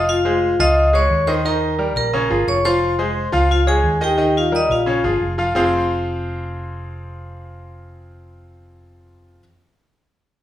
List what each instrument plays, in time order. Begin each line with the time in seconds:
Already playing: fingered electric bass F1, grand piano F3 F4 F5
0.09 vibraphone F4 F5
0.25 grand piano G#3 G#4 C5
0.59 fingered electric bass C#2, grand piano F3 F4 F5, vibraphone D#5 D#6
0.93 grand piano G#3 G#4 C#5, vibraphone C#5 C#6
1.10 fingered electric bass D#2
1.27 grand piano D#3 D#4 D#5, vibraphone C5 C6
1.45 grand piano D#3 D#4 D#5, vibraphone A#4 A#5
1.78 grand piano G3 G4 A#4
1.96 fingered electric bass A#1, vibraphone A#4 A#5
2.13 grand piano C#3 C#4 C#5
2.30 fingered electric bass G1, grand piano F3 F4 G#4
2.47 fingered electric bass F1, vibraphone C#5 C#6
2.65 grand piano F3 F4 F5, vibraphone C5 C6
2.99 grand piano G#3 G#4 C5
3.32 fingered electric bass C#2, grand piano F3 F4 F5
3.51 vibraphone F4 F5
3.67 grand piano G#3 G#4 C#5, vibraphone G#4 G#5
3.84 fingered electric bass D#2
4.01 grand piano D#3 D#4 D#5, vibraphone G4 G5
4.17 grand piano D#3 D#4 D#5
4.37 vibraphone F4 F5
4.52 grand piano G3 G4 A#4, vibraphone D#6
4.56 vibraphone D#5
4.69 fingered electric bass A#1, vibraphone F4 F5
4.86 grand piano C#3 C#4 C#5
5.04 fingered electric bass G1, grand piano F3 F4 G#4
5.21 fingered electric bass F1
5.38 grand piano F3 F4 F5
5.55 fingered electric bass F1, grand piano F3 C4 F4 G#4 C5 F5